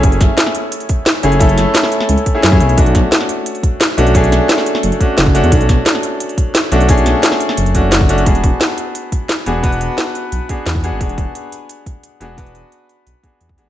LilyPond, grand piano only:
\new Staff \with { instrumentName = "Grand piano" } { \time 4/4 \key e \mixolydian \tempo 4 = 175 <a cis' e' gis'>2.~ <a cis' e' gis'>8 <a cis' e' gis'>8 | <a cis' e' a'>2~ <a cis' e' a'>8 r16 <a cis' e' gis'>8 <a cis' e' gis'>8. | <a cis' d' fis'>2.~ <a cis' d' fis'>8 <a cis' d' fis'>8 | <a cis' d' gis'>2~ <a cis' d' gis'>8 <a cis' d' fis'>4 <a cis' d' fis'>8 |
<a cis' d' fis'>2.~ <a cis' d' fis'>8 <a cis' d' fis'>8 | <a cis' d' gis'>2~ <a cis' d' gis'>8 <a cis' d' fis'>4 <a cis' d' fis'>8 | <b d' fis' gis'>2.~ <b d' fis' gis'>8 <b d' fis' gis'>8 | <b d' fis' b'>2~ <b d' fis' b'>8 <b d' fis' gis'>4 <b d' fis' gis'>8 |
<b d' fis' gis'>2.~ <b d' fis' gis'>8 <b d' fis' gis'>8 | <b d' fis' b'>2~ <b d' fis' b'>8 <b d' fis' gis'>4 <b d' fis' gis'>8 | }